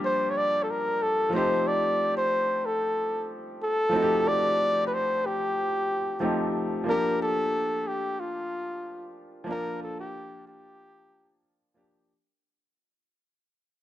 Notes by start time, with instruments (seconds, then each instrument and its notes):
Already playing: grand piano F3 G3 A#3 D4 G4
0.05 flugelhorn C5
0.31 flugelhorn C#5
0.37 flugelhorn D5
0.63 flugelhorn A4
0.70 flugelhorn A#4
1.03 flugelhorn A4
1.30 grand piano F3 A3 C4
1.35 grand piano D#4 G4, flugelhorn C5
1.67 flugelhorn D5
2.17 flugelhorn C5
2.66 flugelhorn A4
3.63 flugelhorn A4
3.89 grand piano F3 A3 C4
3.94 grand piano D#4 F#4
4.02 grand piano G4
4.28 flugelhorn D5
4.87 flugelhorn B4
4.94 flugelhorn C5
5.26 flugelhorn G4
6.20 grand piano F3 A3 C4 D#4 G4
6.84 grand piano F3 A#3
6.88 grand piano D4 G4, flugelhorn A#4
7.22 flugelhorn A4
7.87 flugelhorn G4
8.20 flugelhorn F4
9.44 grand piano F3 A#3
9.49 grand piano D4 F4, flugelhorn A#4
9.83 flugelhorn A4
10.00 flugelhorn G4
10.47 flugelhorn G4
11.74 grand piano F3 A#3 D4 G4